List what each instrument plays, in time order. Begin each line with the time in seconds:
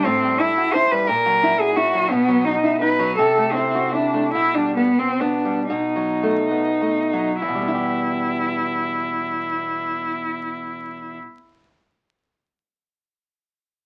0.05 nylon-string guitar A2, cello C4
0.23 nylon-string guitar G3
0.40 cello E4, nylon-string guitar E4
0.57 nylon-string guitar F#4
0.74 nylon-string guitar E4, cello C5
0.91 nylon-string guitar G3, cello B4
1.07 nylon-string guitar A#2, cello A#4
1.26 nylon-string guitar F#3
1.43 nylon-string guitar E4
1.60 nylon-string guitar F#4, cello G#4
1.76 nylon-string guitar E4, cello F#4
1.94 nylon-string guitar F#3
2.10 nylon-string guitar B2, cello B3
2.28 nylon-string guitar F#3
2.45 cello D#4, nylon-string guitar D#4
2.64 nylon-string guitar E4
2.80 nylon-string guitar D#4, cello B4
2.99 nylon-string guitar F#3
3.16 nylon-string guitar C3, cello A4
3.38 nylon-string guitar A3
3.53 cello C4, nylon-string guitar E4
3.75 nylon-string guitar F#4
3.93 cello D4, nylon-string guitar E4
4.14 nylon-string guitar A3
4.32 nylon-string guitar B2, cello E4
4.54 nylon-string guitar G3, cello D4
4.76 cello B3, nylon-string guitar B3
4.99 nylon-string guitar C4, cello C4
5.20 nylon-string guitar B3, cello D4
5.45 nylon-string guitar G3
5.69 nylon-string guitar B2, cello D#4
5.96 nylon-string guitar F#3
6.23 nylon-string guitar A3
6.51 nylon-string guitar B3
6.81 nylon-string guitar A3
7.13 nylon-string guitar F#3
7.40 nylon-string guitar E2, cello E4
7.48 nylon-string guitar B2
7.55 nylon-string guitar G3
7.61 nylon-string guitar B3
7.68 nylon-string guitar E4
7.75 nylon-string guitar G4